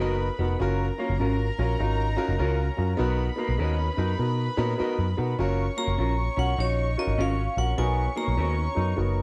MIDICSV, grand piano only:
0, 0, Header, 1, 2, 480
1, 0, Start_track
1, 0, Key_signature, 6, "major"
1, 0, Tempo, 598205
1, 485, Time_signature, 4, 2, 24, 8
1, 7400, End_track
2, 0, Start_track
2, 0, Title_t, "Grand piano"
2, 0, Program_c, 0, 0
2, 0, Note_on_c, 0, 59, 108
2, 5, Note_on_c, 0, 63, 103
2, 10, Note_on_c, 0, 66, 102
2, 12, Note_on_c, 0, 70, 125
2, 201, Note_off_c, 0, 59, 0
2, 204, Note_off_c, 0, 63, 0
2, 207, Note_off_c, 0, 66, 0
2, 208, Note_off_c, 0, 70, 0
2, 313, Note_on_c, 0, 59, 96
2, 319, Note_on_c, 0, 66, 85
2, 320, Note_on_c, 0, 63, 79
2, 327, Note_on_c, 0, 70, 100
2, 422, Note_off_c, 0, 59, 0
2, 426, Note_off_c, 0, 63, 0
2, 426, Note_off_c, 0, 66, 0
2, 429, Note_off_c, 0, 70, 0
2, 479, Note_on_c, 0, 61, 115
2, 485, Note_on_c, 0, 65, 104
2, 492, Note_on_c, 0, 66, 115
2, 495, Note_on_c, 0, 70, 127
2, 681, Note_off_c, 0, 61, 0
2, 684, Note_off_c, 0, 65, 0
2, 688, Note_off_c, 0, 66, 0
2, 689, Note_off_c, 0, 70, 0
2, 788, Note_on_c, 0, 61, 91
2, 793, Note_on_c, 0, 65, 90
2, 799, Note_on_c, 0, 66, 79
2, 800, Note_on_c, 0, 73, 97
2, 900, Note_off_c, 0, 61, 0
2, 902, Note_off_c, 0, 65, 0
2, 905, Note_off_c, 0, 66, 0
2, 905, Note_off_c, 0, 73, 0
2, 954, Note_on_c, 0, 61, 84
2, 964, Note_on_c, 0, 65, 86
2, 968, Note_on_c, 0, 66, 85
2, 972, Note_on_c, 0, 70, 95
2, 1159, Note_off_c, 0, 61, 0
2, 1163, Note_off_c, 0, 65, 0
2, 1166, Note_off_c, 0, 66, 0
2, 1168, Note_off_c, 0, 70, 0
2, 1272, Note_on_c, 0, 61, 99
2, 1275, Note_on_c, 0, 65, 93
2, 1280, Note_on_c, 0, 66, 84
2, 1283, Note_on_c, 0, 70, 96
2, 1381, Note_off_c, 0, 61, 0
2, 1383, Note_off_c, 0, 65, 0
2, 1386, Note_off_c, 0, 66, 0
2, 1387, Note_off_c, 0, 70, 0
2, 1436, Note_on_c, 0, 61, 89
2, 1441, Note_on_c, 0, 65, 89
2, 1445, Note_on_c, 0, 66, 77
2, 1448, Note_on_c, 0, 70, 101
2, 1640, Note_off_c, 0, 61, 0
2, 1642, Note_off_c, 0, 65, 0
2, 1644, Note_off_c, 0, 66, 0
2, 1646, Note_off_c, 0, 70, 0
2, 1739, Note_on_c, 0, 61, 123
2, 1741, Note_on_c, 0, 65, 112
2, 1746, Note_on_c, 0, 66, 110
2, 1750, Note_on_c, 0, 70, 127
2, 1855, Note_off_c, 0, 61, 0
2, 1856, Note_off_c, 0, 65, 0
2, 1859, Note_off_c, 0, 66, 0
2, 1861, Note_off_c, 0, 70, 0
2, 1912, Note_on_c, 0, 61, 115
2, 1919, Note_on_c, 0, 65, 102
2, 1922, Note_on_c, 0, 66, 108
2, 1922, Note_on_c, 0, 70, 118
2, 2118, Note_off_c, 0, 61, 0
2, 2121, Note_off_c, 0, 65, 0
2, 2123, Note_off_c, 0, 66, 0
2, 2123, Note_off_c, 0, 70, 0
2, 2222, Note_on_c, 0, 61, 98
2, 2225, Note_on_c, 0, 65, 85
2, 2227, Note_on_c, 0, 66, 89
2, 2233, Note_on_c, 0, 70, 101
2, 2337, Note_off_c, 0, 61, 0
2, 2338, Note_off_c, 0, 65, 0
2, 2339, Note_off_c, 0, 66, 0
2, 2342, Note_off_c, 0, 70, 0
2, 2384, Note_on_c, 0, 59, 126
2, 2393, Note_on_c, 0, 63, 110
2, 2397, Note_on_c, 0, 66, 115
2, 2401, Note_on_c, 0, 70, 127
2, 2594, Note_off_c, 0, 59, 0
2, 2598, Note_off_c, 0, 63, 0
2, 2600, Note_off_c, 0, 66, 0
2, 2602, Note_off_c, 0, 70, 0
2, 2696, Note_on_c, 0, 59, 92
2, 2701, Note_on_c, 0, 63, 88
2, 2707, Note_on_c, 0, 66, 86
2, 2715, Note_on_c, 0, 70, 101
2, 2813, Note_off_c, 0, 59, 0
2, 2816, Note_off_c, 0, 63, 0
2, 2819, Note_off_c, 0, 66, 0
2, 2823, Note_off_c, 0, 70, 0
2, 2873, Note_on_c, 0, 59, 90
2, 2877, Note_on_c, 0, 63, 83
2, 2881, Note_on_c, 0, 66, 79
2, 2884, Note_on_c, 0, 70, 96
2, 3078, Note_off_c, 0, 59, 0
2, 3080, Note_off_c, 0, 63, 0
2, 3082, Note_off_c, 0, 66, 0
2, 3084, Note_off_c, 0, 70, 0
2, 3186, Note_on_c, 0, 59, 85
2, 3187, Note_on_c, 0, 63, 82
2, 3195, Note_on_c, 0, 66, 86
2, 3198, Note_on_c, 0, 70, 106
2, 3299, Note_off_c, 0, 59, 0
2, 3299, Note_off_c, 0, 63, 0
2, 3303, Note_off_c, 0, 66, 0
2, 3305, Note_off_c, 0, 70, 0
2, 3357, Note_on_c, 0, 59, 91
2, 3361, Note_on_c, 0, 63, 81
2, 3362, Note_on_c, 0, 66, 80
2, 3367, Note_on_c, 0, 70, 95
2, 3560, Note_off_c, 0, 59, 0
2, 3562, Note_off_c, 0, 63, 0
2, 3563, Note_off_c, 0, 66, 0
2, 3565, Note_off_c, 0, 70, 0
2, 3668, Note_on_c, 0, 63, 111
2, 3670, Note_on_c, 0, 59, 123
2, 3674, Note_on_c, 0, 66, 108
2, 3678, Note_on_c, 0, 70, 127
2, 3780, Note_off_c, 0, 63, 0
2, 3781, Note_off_c, 0, 59, 0
2, 3782, Note_off_c, 0, 66, 0
2, 3785, Note_off_c, 0, 70, 0
2, 3836, Note_on_c, 0, 59, 103
2, 3842, Note_on_c, 0, 63, 100
2, 3846, Note_on_c, 0, 66, 101
2, 3850, Note_on_c, 0, 70, 125
2, 4040, Note_off_c, 0, 59, 0
2, 4043, Note_off_c, 0, 63, 0
2, 4044, Note_off_c, 0, 66, 0
2, 4046, Note_off_c, 0, 70, 0
2, 4150, Note_on_c, 0, 59, 90
2, 4152, Note_on_c, 0, 63, 86
2, 4153, Note_on_c, 0, 66, 82
2, 4160, Note_on_c, 0, 70, 99
2, 4261, Note_off_c, 0, 59, 0
2, 4262, Note_off_c, 0, 63, 0
2, 4262, Note_off_c, 0, 66, 0
2, 4265, Note_off_c, 0, 70, 0
2, 4322, Note_on_c, 0, 61, 122
2, 4325, Note_on_c, 0, 65, 108
2, 4330, Note_on_c, 0, 66, 105
2, 4335, Note_on_c, 0, 70, 125
2, 4523, Note_off_c, 0, 61, 0
2, 4524, Note_off_c, 0, 65, 0
2, 4527, Note_off_c, 0, 66, 0
2, 4529, Note_off_c, 0, 70, 0
2, 4628, Note_on_c, 0, 61, 79
2, 4631, Note_on_c, 0, 65, 68
2, 4639, Note_on_c, 0, 66, 73
2, 4641, Note_on_c, 0, 70, 82
2, 4740, Note_off_c, 0, 61, 0
2, 4741, Note_off_c, 0, 65, 0
2, 4745, Note_off_c, 0, 66, 0
2, 4746, Note_off_c, 0, 70, 0
2, 4794, Note_on_c, 0, 61, 72
2, 4797, Note_on_c, 0, 65, 61
2, 4803, Note_on_c, 0, 66, 71
2, 4808, Note_on_c, 0, 73, 86
2, 4999, Note_off_c, 0, 61, 0
2, 5000, Note_off_c, 0, 65, 0
2, 5003, Note_off_c, 0, 66, 0
2, 5006, Note_off_c, 0, 73, 0
2, 5110, Note_on_c, 0, 61, 81
2, 5114, Note_on_c, 0, 65, 74
2, 5121, Note_on_c, 0, 66, 69
2, 5123, Note_on_c, 0, 70, 81
2, 5221, Note_off_c, 0, 61, 0
2, 5222, Note_off_c, 0, 65, 0
2, 5226, Note_off_c, 0, 66, 0
2, 5227, Note_off_c, 0, 70, 0
2, 5284, Note_on_c, 0, 61, 78
2, 5288, Note_on_c, 0, 65, 69
2, 5290, Note_on_c, 0, 66, 70
2, 5296, Note_on_c, 0, 73, 78
2, 5483, Note_off_c, 0, 61, 0
2, 5485, Note_off_c, 0, 65, 0
2, 5486, Note_off_c, 0, 66, 0
2, 5489, Note_off_c, 0, 73, 0
2, 5597, Note_on_c, 0, 61, 93
2, 5597, Note_on_c, 0, 65, 94
2, 5600, Note_on_c, 0, 66, 92
2, 5609, Note_on_c, 0, 70, 108
2, 5704, Note_off_c, 0, 61, 0
2, 5704, Note_off_c, 0, 65, 0
2, 5705, Note_off_c, 0, 66, 0
2, 5710, Note_off_c, 0, 70, 0
2, 5765, Note_on_c, 0, 61, 100
2, 5769, Note_on_c, 0, 65, 81
2, 5773, Note_on_c, 0, 66, 89
2, 5777, Note_on_c, 0, 73, 105
2, 5964, Note_off_c, 0, 61, 0
2, 5966, Note_off_c, 0, 65, 0
2, 5968, Note_off_c, 0, 66, 0
2, 5970, Note_off_c, 0, 73, 0
2, 6072, Note_on_c, 0, 61, 78
2, 6078, Note_on_c, 0, 65, 67
2, 6083, Note_on_c, 0, 70, 90
2, 6084, Note_on_c, 0, 66, 66
2, 6181, Note_off_c, 0, 61, 0
2, 6184, Note_off_c, 0, 65, 0
2, 6187, Note_off_c, 0, 66, 0
2, 6187, Note_off_c, 0, 70, 0
2, 6240, Note_on_c, 0, 59, 107
2, 6242, Note_on_c, 0, 63, 96
2, 6249, Note_on_c, 0, 66, 90
2, 6250, Note_on_c, 0, 70, 112
2, 6441, Note_off_c, 0, 59, 0
2, 6442, Note_off_c, 0, 63, 0
2, 6445, Note_off_c, 0, 66, 0
2, 6446, Note_off_c, 0, 70, 0
2, 6545, Note_on_c, 0, 59, 79
2, 6549, Note_on_c, 0, 63, 76
2, 6555, Note_on_c, 0, 66, 77
2, 6558, Note_on_c, 0, 70, 88
2, 6658, Note_off_c, 0, 59, 0
2, 6660, Note_off_c, 0, 63, 0
2, 6662, Note_off_c, 0, 66, 0
2, 6664, Note_off_c, 0, 70, 0
2, 6718, Note_on_c, 0, 59, 70
2, 6722, Note_on_c, 0, 63, 69
2, 6727, Note_on_c, 0, 66, 70
2, 6733, Note_on_c, 0, 73, 87
2, 6919, Note_off_c, 0, 59, 0
2, 6922, Note_off_c, 0, 63, 0
2, 6924, Note_off_c, 0, 66, 0
2, 6927, Note_off_c, 0, 73, 0
2, 7021, Note_on_c, 0, 59, 74
2, 7024, Note_on_c, 0, 63, 71
2, 7029, Note_on_c, 0, 66, 70
2, 7031, Note_on_c, 0, 70, 89
2, 7135, Note_off_c, 0, 59, 0
2, 7136, Note_off_c, 0, 63, 0
2, 7139, Note_off_c, 0, 66, 0
2, 7140, Note_off_c, 0, 70, 0
2, 7193, Note_on_c, 0, 59, 90
2, 7194, Note_on_c, 0, 63, 85
2, 7199, Note_on_c, 0, 66, 86
2, 7204, Note_on_c, 0, 70, 100
2, 7397, Note_off_c, 0, 59, 0
2, 7397, Note_off_c, 0, 63, 0
2, 7400, Note_off_c, 0, 66, 0
2, 7400, Note_off_c, 0, 70, 0
2, 7400, End_track
0, 0, End_of_file